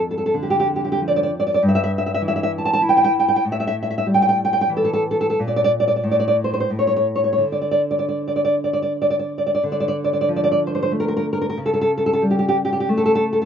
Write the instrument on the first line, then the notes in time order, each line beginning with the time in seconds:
nylon-string guitar
Already playing: F2
0.11 A4
0.18 A4
0.26 A4
0.34 D3
0.43 G4
0.50 G4
0.60 G4
0.76 G4
0.84 G4
0.92 G4
1.01 F3
1.08 D5
1.16 D5
1.23 D5
1.40 D5
1.47 D5
1.54 D5
1.63 G2
1.68 E5
1.75 E5
1.84 E5
1.98 E5
2.06 E5
2.14 E5
2.22 E3
2.28 E5
2.36 E5
2.43 E5
2.58 A5
2.65 A5
2.73 A5
2.82 E4
2.89 G5
2.97 G5
3.04 G5
3.20 G5
3.28 G5
3.36 G5
3.45 A2
3.52 E5
3.60 E5
3.67 E5
3.83 E5
3.90 E5
3.98 E5
4.06 G3
4.14 G5
4.22 G5
4.29 G5
4.45 G5
4.53 G5
4.61 G5
4.69 E3
4.77 A4
4.85 A4
4.93 A4
5.11 A4
5.21 A4
5.30 A4
5.39 A#2
5.48 D5
5.56 D5
5.64 D5
5.80 D5
5.88 D5
5.96 D5
6.04 A2
6.12 D5
6.20 D5
6.28 D5
6.44 C5
6.54 C5
6.60 C5
6.70 A2
6.79 C#5
6.87 C#5
6.96 C#5
7.16 C#5
7.24 C#5
7.33 C#5
7.38 D3
7.52 D5
7.61 D5
7.71 D5
7.91 D5
7.99 D5
8.09 D5
8.28 D5
8.36 D5
8.45 D5
8.64 D5
8.73 D5
8.82 D5
9.02 D5
9.10 D5
9.19 D5
9.38 D5
9.47 D5
9.55 D5
9.63 D3
9.72 D5
9.80 D5
9.88 D5
10.04 D5
10.13 D5
10.21 D5
10.29 F3
10.36 D5
10.44 D5
10.52 D5
10.67 C5
10.75 C5
10.83 C5
10.91 A3
11.00 A#4
11.08 A#4
11.17 A#4
11.33 A#4
11.42 A#4
11.50 A#4
11.57 C#3
11.66 A4
11.73 A4
11.81 A4
11.98 A4
12.06 A4
12.13 A4
12.22 G3
12.31 G4
12.39 G4
12.49 G4
12.65 G4
12.73 G4
12.80 G4
12.89 A3
12.98 A4
13.06 A4
13.15 A4
13.33 A4
13.42 A4